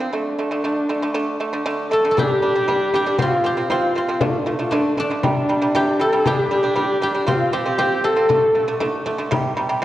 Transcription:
Already playing: C4
0.00 F3 C4
0.13 D3 A3 D4
0.38 D3 A3
0.51 D3 A3
0.64 D3 A3
0.89 D3 A3
1.02 D3 A3
1.14 D3 A3
1.40 D3 A3
1.53 D3 A3
1.66 D3 A3
1.91 D3 A3 A4
2.05 D3 A3
2.11 A4
2.16 G3 D4 G4, frame drum
2.42 G3 D4, frame drum
2.55 G3 D4
2.68 G3 D4, frame drum
2.93 G3 D4 G4, frame drum
3.06 G3 D4
3.18 F3 C4 F4, frame drum
3.44 F3 C4 G4, frame drum
3.57 F3 C4
3.70 F3 C4 F4, frame drum
3.95 F3 C4 F4
4.08 F3 C4
4.21 D3 A3 D4, frame drum
4.30 F4
4.39 D4
4.46 D3 A3 F4, frame drum
4.54 D4
4.59 D3 A3 F4
4.70 D3 A3 D4, frame drum
4.97 D3 A3 D4, frame drum
5.10 D3 A3
5.23 C3 G3, frame drum
5.49 C3 G3, frame drum
5.61 C3 G3
5.75 C3 G3 G4, frame drum
5.99 C3 G3 A4, frame drum
6.12 C3 G3
6.25 G3 D4 G4, frame drum
6.51 G3 D4, frame drum
6.63 G3 D4
6.76 G3 D4, frame drum
7.02 G3 D4 G4
7.15 G3 D4
7.27 F3 C4 F4, frame drum
7.53 F3 C4 G4, frame drum
7.66 F3 C4
7.78 F3 C4 G4, frame drum
8.04 F3 C4 A4, frame drum
8.16 F3 C4
8.29 D3 A3, frame drum
8.55 D3 A3, frame drum
8.68 D3 A3
8.80 D3 A3, frame drum
9.06 D3 A3, frame drum
9.18 D3 A3
9.31 C3 G3, frame drum
9.57 C3 G3, frame drum
9.69 C3 G3

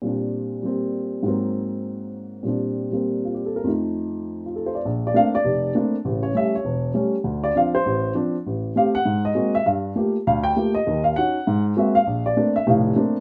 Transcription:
0.02 A#2 G3 C4
0.07 D4
0.63 G3 A#3 C4
1.23 G#2 F#3 A#3
1.28 C4
2.43 A#2 G3 C4
2.48 D4
2.91 G3 A#3 C4
3.25 F4
3.34 G4
3.46 A4
3.56 A#4
3.64 F2 F3 A3
3.68 D#4
4.46 F4
4.56 A4
4.66 C5
4.75 D5
4.85 A#1
5.07 D5
5.14 A3 A#3 C4 D4 F5
5.35 D5
5.45 F1
5.75 A3 A#3 C4 D4
6.05 A1 C#3
6.23 C#5
6.35 G3 A3 C#4 E5
6.55 C#5
6.65 E1
6.94 G3 A3 C#4
7.24 D2 D3
7.44 D5
7.55 F3 C4 D4 F5
7.75 C5
7.86 A1
8.15 F3 C4 D4
8.46 A1
8.76 A3 C4 G4 F5
8.95 F#5
9.05 G#2
9.25 D#5
9.35 G#3 A#3 C4 F#4
9.55 E5
9.66 G2 F5
9.96 A3 A#3 F4 G4
10.27 D2 F5
10.44 G5
10.56 A3 A#3 F4 G4
10.74 D#5
10.87 D#2 D#3
11.04 F5
11.16 C#4 D#4 F#4 F#5
11.47 G#2
11.77 G#3 A#3 C4 F#4 E5
11.95 F5
12.07 A#1
12.26 D5
12.37 A3 A#3 C4 D4
12.56 E5
12.67 F1 A2 F5
12.96 A3 A#3 C4 D4

